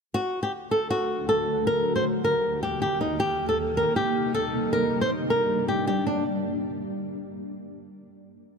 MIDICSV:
0, 0, Header, 1, 3, 480
1, 0, Start_track
1, 0, Key_signature, -2, "minor"
1, 0, Tempo, 382166
1, 178, Time_signature, 4, 2, 24, 8
1, 10779, End_track
2, 0, Start_track
2, 0, Title_t, "Nylon-string guitar"
2, 0, Program_c, 0, 24
2, 179, Note_on_c, 0, 66, 99
2, 517, Note_off_c, 0, 66, 0
2, 536, Note_on_c, 0, 67, 71
2, 638, Note_off_c, 0, 67, 0
2, 896, Note_on_c, 0, 69, 71
2, 1100, Note_off_c, 0, 69, 0
2, 1136, Note_on_c, 0, 66, 85
2, 1589, Note_off_c, 0, 66, 0
2, 1617, Note_on_c, 0, 69, 80
2, 2069, Note_off_c, 0, 69, 0
2, 2096, Note_on_c, 0, 70, 95
2, 2436, Note_off_c, 0, 70, 0
2, 2457, Note_on_c, 0, 72, 75
2, 2559, Note_off_c, 0, 72, 0
2, 2819, Note_on_c, 0, 70, 79
2, 3270, Note_off_c, 0, 70, 0
2, 3299, Note_on_c, 0, 67, 69
2, 3501, Note_off_c, 0, 67, 0
2, 3538, Note_on_c, 0, 67, 73
2, 3741, Note_off_c, 0, 67, 0
2, 3777, Note_on_c, 0, 63, 71
2, 3980, Note_off_c, 0, 63, 0
2, 4017, Note_on_c, 0, 67, 99
2, 4356, Note_off_c, 0, 67, 0
2, 4379, Note_on_c, 0, 69, 79
2, 4480, Note_off_c, 0, 69, 0
2, 4737, Note_on_c, 0, 70, 80
2, 4940, Note_off_c, 0, 70, 0
2, 4976, Note_on_c, 0, 67, 86
2, 5428, Note_off_c, 0, 67, 0
2, 5457, Note_on_c, 0, 69, 85
2, 5909, Note_off_c, 0, 69, 0
2, 5938, Note_on_c, 0, 70, 88
2, 6276, Note_off_c, 0, 70, 0
2, 6298, Note_on_c, 0, 72, 78
2, 6399, Note_off_c, 0, 72, 0
2, 6659, Note_on_c, 0, 70, 75
2, 7110, Note_off_c, 0, 70, 0
2, 7139, Note_on_c, 0, 67, 79
2, 7342, Note_off_c, 0, 67, 0
2, 7378, Note_on_c, 0, 67, 76
2, 7581, Note_off_c, 0, 67, 0
2, 7618, Note_on_c, 0, 62, 71
2, 7821, Note_off_c, 0, 62, 0
2, 10779, End_track
3, 0, Start_track
3, 0, Title_t, "Ambient pad"
3, 0, Program_c, 1, 92
3, 179, Note_on_c, 1, 38, 81
3, 179, Note_on_c, 1, 50, 77
3, 179, Note_on_c, 1, 57, 74
3, 180, Note_on_c, 1, 66, 88
3, 2080, Note_off_c, 1, 38, 0
3, 2080, Note_off_c, 1, 50, 0
3, 2080, Note_off_c, 1, 57, 0
3, 2080, Note_off_c, 1, 66, 0
3, 2096, Note_on_c, 1, 39, 85
3, 2096, Note_on_c, 1, 51, 76
3, 2096, Note_on_c, 1, 67, 92
3, 2097, Note_on_c, 1, 58, 74
3, 3998, Note_off_c, 1, 39, 0
3, 3998, Note_off_c, 1, 51, 0
3, 3998, Note_off_c, 1, 67, 0
3, 4017, Note_on_c, 1, 48, 82
3, 4017, Note_on_c, 1, 55, 76
3, 4018, Note_on_c, 1, 63, 89
3, 5919, Note_off_c, 1, 48, 0
3, 5919, Note_off_c, 1, 63, 0
3, 5937, Note_on_c, 1, 43, 80
3, 5937, Note_on_c, 1, 62, 94
3, 7808, Note_off_c, 1, 58, 0
3, 7819, Note_off_c, 1, 55, 0
3, 7838, Note_off_c, 1, 43, 0
3, 7839, Note_off_c, 1, 62, 0
3, 10779, End_track
0, 0, End_of_file